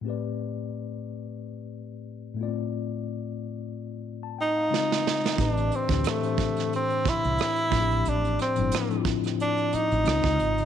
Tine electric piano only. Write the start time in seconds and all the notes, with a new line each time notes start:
0.01 A2 A3 C4
0.06 G4 B4 D5
2.34 A2 A3
2.39 B3 F4
2.43 C4 D5
4.23 A5
4.39 G5
4.57 F5
4.70 C#3 G#3 C4 F4
4.74 D5
5.37 A2 E3 C4 D4 G4
5.41 B4
5.89 A2 E3 C4 D4 G4 C5
6.22 A2 E3 C4 D4 G4
6.26 C5
7.70 A2 F3 C4 D4
7.74 F4
7.81 G4
8.55 A2 F3 C4 D4
8.60 E4
8.88 A2 F3 C4 D4
8.93 E4
8.99 F4
10.03 C#3 G#3 C4 D#4
10.07 F4